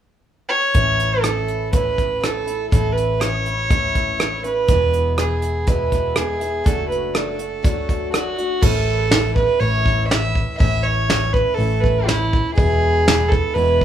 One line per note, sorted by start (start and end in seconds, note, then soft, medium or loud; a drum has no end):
0.49 1.23 C#5 loud
0.74 2.68 A1 medium
0.74 1.23 A2 medium
0.74 1.22 E3 medium
0.74 1.24 A3 medium
0.74 1.24 C#4 medium
0.74 1.26 E4 medium
0.74 kick loud
0.74 closed hi-hat medium
1.00 closed hi-hat medium
1.22 1.73 E3 medium
1.22 1.72 A3 medium
1.22 1.74 C#4 medium
1.22 1.72 A4 medium
1.22 cross-stick loud
1.22 closed hi-hat medium
1.26 1.74 E4 medium
1.48 closed hi-hat medium
1.72 2.22 A2 medium
1.72 2.20 E3 medium
1.72 2.20 A3 medium
1.72 2.21 C#4 medium
1.72 2.22 E4 medium
1.72 2.25 B4 medium
1.72 kick medium
1.72 closed hi-hat medium
1.98 kick medium
1.98 closed hi-hat medium
2.20 2.46 E3 soft
2.20 2.46 A3 medium
2.20 2.46 C#4 medium
2.20 2.45 E4 medium
2.20 2.69 A4 medium
2.20 cross-stick loud
2.20 closed hi-hat medium
2.46 2.71 A3 soft
2.46 2.71 C#4 soft
2.46 2.71 E4 soft
2.46 closed hi-hat medium
2.70 4.65 A1 medium
2.70 3.20 A2 medium
2.70 3.19 E3 medium
2.70 3.20 A3 medium
2.70 3.21 C#4 medium
2.70 3.23 E4 medium
2.70 2.94 A4 medium
2.70 kick loud
2.70 closed hi-hat medium
2.92 3.22 B4 medium
2.97 closed hi-hat medium
3.20 3.45 E3 medium
3.20 3.46 A3 medium
3.20 3.46 C#4 medium
3.20 3.45 E4 medium
3.20 4.43 C#5 loud
3.20 cross-stick loud
3.20 closed hi-hat medium
3.46 3.69 A3 soft
3.46 3.69 C#4 soft
3.46 3.70 E4 soft
3.46 closed hi-hat medium
3.69 4.18 A2 medium
3.69 4.17 E3 medium
3.69 4.18 A3 medium
3.69 4.19 C#4 medium
3.69 4.19 E4 medium
3.69 kick loud
3.69 closed hi-hat medium
3.95 kick medium
3.95 closed hi-hat soft
4.18 4.43 E3 medium
4.18 4.44 A3 medium
4.18 4.44 C#4 medium
4.18 4.42 E4 medium
4.18 cross-stick loud
4.18 closed hi-hat medium
4.44 4.70 A3 soft
4.44 4.69 C#4 soft
4.44 4.68 E4 soft
4.44 5.14 B4 medium
4.44 closed hi-hat medium
4.68 6.61 E1 medium
4.68 5.18 E2 medium
4.68 5.18 B2 medium
4.68 5.16 E3 medium
4.68 5.17 G#3 medium
4.68 5.18 B3 medium
4.68 5.19 E4 medium
4.68 kick loud
4.68 closed hi-hat medium
4.93 closed hi-hat medium
5.17 5.67 E3 medium
5.17 5.67 G#3 medium
5.17 5.67 B3 medium
5.17 5.68 E4 medium
5.17 5.69 G#4 medium
5.17 cross-stick loud
5.17 closed hi-hat medium
5.42 closed hi-hat medium
5.67 6.16 E2 medium
5.67 6.16 B2 medium
5.67 6.15 E3 medium
5.67 6.16 G#3 medium
5.67 6.17 B3 medium
5.67 6.17 E4 medium
5.67 6.17 B4 medium
5.67 kick medium
5.67 closed hi-hat medium
5.92 kick medium
5.92 closed hi-hat medium
6.16 6.40 E3 medium
6.16 6.41 G#3 soft
6.16 6.40 B3 medium
6.16 6.39 E4 medium
6.16 6.67 G#4 medium
6.16 cross-stick loud
6.16 closed hi-hat medium
6.40 6.64 E3 soft
6.40 6.64 G#3 soft
6.40 6.65 B3 soft
6.40 6.65 E4 soft
6.40 closed hi-hat medium
6.64 8.59 F#1 medium
6.64 7.13 F#3 medium
6.64 7.14 A3 medium
6.64 7.15 D4 medium
6.64 7.15 F#4 medium
6.64 6.88 A4 medium
6.64 kick loud
6.64 closed hi-hat medium
6.89 7.16 B4 medium
6.89 closed hi-hat medium
7.14 7.39 F#3 soft
7.14 7.39 A3 medium
7.14 7.39 D4 medium
7.14 7.37 F#4 medium
7.14 8.11 A4 medium
7.14 cross-stick loud
7.14 closed hi-hat medium
7.38 7.62 A3 soft
7.38 7.63 D4 soft
7.38 7.63 F#4 soft
7.38 closed hi-hat medium
7.62 8.11 F#3 medium
7.62 8.13 A3 medium
7.62 8.13 D4 medium
7.62 8.13 F#4 medium
7.62 kick loud
7.62 closed hi-hat medium
7.89 kick medium
7.89 closed hi-hat medium
8.12 8.37 F#3 medium
8.12 8.38 A3 medium
8.12 8.37 D4 medium
8.12 8.63 F#4 medium
8.12 8.35 F#4 medium
8.12 cross-stick loud
8.12 closed hi-hat medium
8.36 8.61 A3 soft
8.36 8.62 D4 medium
8.36 8.62 F#4 medium
8.36 closed hi-hat medium
8.61 9.46 A1 medium
8.61 9.11 A2 medium
8.61 9.09 E3 medium
8.61 9.09 A3 medium
8.61 9.09 C#4 medium
8.61 9.11 E4 medium
8.61 9.35 A4 loud
8.61 kick loud
8.61 crash medium
9.09 9.60 E3 medium
9.09 9.59 A3 medium
9.09 9.60 C#4 medium
9.09 9.61 E4 medium
9.09 snare loud
9.09 open hi-hat soft
9.35 9.61 B4 medium
9.35 kick medium
9.59 10.44 A1 loud
9.59 10.10 A2 medium
9.59 10.08 E3 medium
9.59 10.08 A3 medium
9.59 10.09 C#4 medium
9.59 10.10 E4 medium
9.59 10.07 C#5 medium
9.59 open hi-hat soft
9.86 kick medium
10.07 10.58 E3 medium
10.07 10.58 A3 medium
10.07 10.59 C#4 medium
10.07 10.60 E4 medium
10.07 10.55 E5 loud
10.07 snare loud
10.07 open hi-hat soft
10.35 kick medium
10.58 11.43 A1 medium
10.58 11.08 A2 medium
10.58 11.07 E3 medium
10.58 11.08 A3 medium
10.58 11.09 C#4 medium
10.58 11.11 E4 medium
10.58 10.85 E5 loud
10.58 kick loud
10.58 open hi-hat soft
10.83 11.34 C#5 medium
11.08 11.57 E3 medium
11.08 11.57 A3 medium
11.08 11.58 C#4 medium
11.08 11.59 E4 medium
11.08 snare loud
11.08 open hi-hat soft
11.33 11.56 B4 medium
11.33 kick medium
11.54 12.07 A2 medium
11.54 12.06 E3 medium
11.54 11.82 A4 medium
11.58 12.41 A1 loud
11.58 12.08 A3 medium
11.58 12.08 C#4 medium
11.58 12.08 E4 medium
11.58 open hi-hat soft
11.80 12.08 B4 medium
11.80 kick medium
12.07 12.55 E3 medium
12.07 12.57 A3 medium
12.07 12.57 C#4 medium
12.07 12.54 E4 medium
12.07 12.57 E4 medium
12.07 snare loud
12.07 open hi-hat soft
12.33 kick medium
12.54 13.40 E1 medium
12.54 13.05 E2 medium
12.54 13.06 B2 medium
12.54 13.04 E3 medium
12.54 13.06 G#3 medium
12.54 13.07 B3 medium
12.54 13.07 E4 medium
12.54 13.30 G#4 loud
12.54 kick loud
12.54 open hi-hat soft
13.05 13.31 E3 medium
13.05 13.30 G#3 medium
13.05 13.30 B3 medium
13.05 13.28 E4 medium
13.05 snare loud
13.05 open hi-hat soft
13.28 13.54 G#3 soft
13.28 13.55 B3 soft
13.28 13.55 E4 soft
13.28 13.56 A4 medium
13.28 kick medium
13.33 13.54 E3 soft
13.54 13.85 E1 loud
13.54 13.85 E2 medium
13.54 13.85 B2 medium
13.54 13.85 E3 medium
13.54 13.85 G#3 medium
13.54 13.85 B3 medium
13.54 13.85 E4 medium
13.54 13.85 B4 loud
13.54 open hi-hat medium
13.81 kick medium